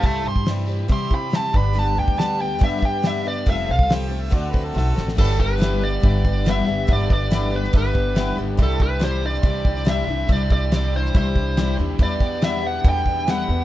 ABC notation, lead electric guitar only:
X:1
M:4/4
L:1/8
Q:1/4=141
K:Gmix
V:1 name="Lead electric guitar"
[ea] c' z2 c' b a b | a g a g e g e d | e f z6 | [K:G] A B2 d3 e2 |
d d2 B B3 z | A B c d3 e2 | d d2 c c3 z | d2 e f g2 f2 |]